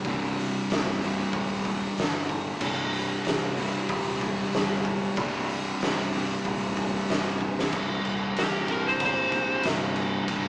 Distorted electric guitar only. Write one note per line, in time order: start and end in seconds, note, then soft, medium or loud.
0.05 1.03 C2 loud
0.05 1.00 G2 loud
0.05 1.01 C3 loud
1.01 2.60 C2 medium
1.01 2.60 G2 medium
1.01 2.62 C3 medium
2.60 3.59 C2 medium
2.60 3.56 G2 loud
2.60 3.57 C3 loud
3.57 5.18 C2 medium
3.57 5.16 G2 medium
3.57 5.21 C3 medium
5.19 6.12 C2 loud
5.19 6.13 G2 loud
5.19 6.13 C3 loud
6.14 7.73 C2 medium
6.14 7.72 G2 medium
6.14 7.72 C3 loud
7.74 8.71 C2 medium
7.74 8.68 G2 medium
7.74 8.68 C3 loud
8.69 9.65 C2 medium
8.69 9.64 G2 medium
8.69 9.67 C3 medium
9.65 10.29 C2 medium
9.65 10.28 G2 medium
9.65 10.31 C3 medium
10.29 10.48 C2 medium
10.29 10.48 G2 loud
10.29 10.48 C3 loud